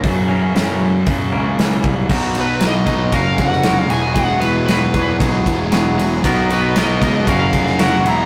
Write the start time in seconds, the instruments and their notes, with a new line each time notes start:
0.04 distorted electric guitar F#2 C#3 F#3, picked electric bass F#2, kick, open hi-hat
0.28 clean electric guitar C#3 E3 A#3 C#4
0.54 picked electric bass F#2, clean electric guitar C#3 E3 A#3 C#4, snare, open hi-hat
1.06 distorted electric guitar F#2 C#3, picked electric bass F#2, kick, open hi-hat
1.11 distorted electric guitar F#3
1.32 picked electric bass C#2, clean electric guitar C#3 E3 A#3 C#4
1.58 picked electric bass C#2, clean electric guitar C#3 E3 A#3 C#4, snare, open hi-hat
1.83 picked electric bass C2, kick
2.09 picked electric bass B1, clean electric guitar B2 F#3 A#3 D#4, overdriven electric guitar B2 F#3 B3, kick, crash
2.35 overdriven electric guitar B2 F#3 B3, ride
2.41 lead electric guitar B4
2.60 clean electric guitar B2 F#3 A#3 D#4, overdriven electric guitar B2 F#3 B3, snare, ride
2.67 lead electric guitar D#5
2.86 picked electric bass B1, overdriven electric guitar B2 F#3 B3, clean electric guitar F#3 A#3 D#4, kick, ride
3.12 picked electric bass F#1, overdriven electric guitar F#2 C#3 F#3, clean electric guitar F#3 G#3 C#4 F#4 A#4, lead electric guitar F5, kick, ride
3.38 picked electric bass F1, overdriven electric guitar F#2 C#3 F#3, lead electric guitar F#5, kick, ride
3.53 snare
3.63 overdriven electric guitar F#2 C#3 F#3, clean electric guitar F#3 G#3 C#4 F#4 A#4, snare, ride
3.90 picked electric bass E1, overdriven electric guitar E2 B2 E3, clean electric guitar E3 F#3 B3 F#4 G#4, lead electric guitar G#5, ride
4.15 overdriven electric guitar E2 B2 E3, clean electric guitar E3 F#3 B3 F#4 G#4, lead electric guitar F#5, kick, ride
4.40 overdriven electric guitar E2 B2 E3, lead electric guitar B4, ride
4.66 overdriven electric guitar E2 B2 E3, clean electric guitar F#3 B3 F#4 G#4, lead electric guitar B4, snare, ride
4.94 picked electric bass E2, overdriven electric guitar E2 B2 E3, clean electric guitar B3 F#4 G#4, kick, ride
5.19 picked electric bass B1, overdriven electric guitar E2 B2 E3, clean electric guitar F#3 B3 F#4 G#4, kick, ride
5.46 picked electric bass E1, overdriven electric guitar E2 B2 E3, kick, ride
5.71 overdriven electric guitar E2 B2 E3, clean electric guitar E3 F#3 B3 F#4 G#4, snare, ride
5.96 overdriven electric guitar E2 B2 E3, clean electric guitar B3 F#4 G#4, ride
6.23 picked electric bass B1, overdriven electric guitar B2 F#3 B3, clean electric guitar B2 D#3 F#3 B3 D#4 A#4, kick, ride
6.50 overdriven electric guitar B2 F#3 B3, lead electric guitar B4, ride
6.75 overdriven electric guitar B2 F#3 B3, clean electric guitar F#3 B3 D#4 A#4, lead electric guitar D#5, snare, ride
7.01 picked electric bass C#2, overdriven electric guitar B2 F#3 B3, clean electric guitar F#3 B3 D#4 A#4, kick, ride
7.27 picked electric bass F#1, overdriven electric guitar F#2 C#3 F#3, clean electric guitar F#3 G#3 C#4 F#4 A#4, lead electric guitar F5, kick, ride
7.53 picked electric bass F1, overdriven electric guitar F#2 C#3 F#3, kick, ride
7.67 snare
7.78 overdriven electric guitar F#2 C#3 F#3, clean electric guitar F#3 G#3 C#4 F#4 A#4, snare, ride
7.83 lead electric guitar F#5
8.03 picked electric bass E1, clean electric guitar E3 F#3 B3 E4 G#4, ride
8.07 overdriven electric guitar E2 B2 E3, lead electric guitar A#5